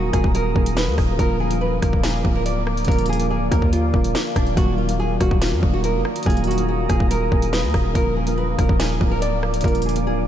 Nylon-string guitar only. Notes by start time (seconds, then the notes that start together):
0.13 G#4
0.35 A#4
0.76 B4
1.19 A#4
1.40 G#4
1.61 B4
1.83 A#4
2.04 G#4
2.35 A#4
2.46 D5
2.88 A#4
3.09 G#4
3.30 G#4
3.52 A#4
3.73 F4
4.36 D4
4.57 F#4
4.78 F4
4.99 G#4
5.20 F#4
5.41 F4
5.73 F#4
5.84 A#4
6.26 G#4
6.47 F#4
6.69 F#4
6.89 G#4
7.11 A#4
7.53 B4
7.95 A#4
8.16 G#4
8.38 B4
8.59 A#4
8.80 G#4
9.11 A#4
9.22 D5
9.64 A#4
9.86 G#4
10.07 G#4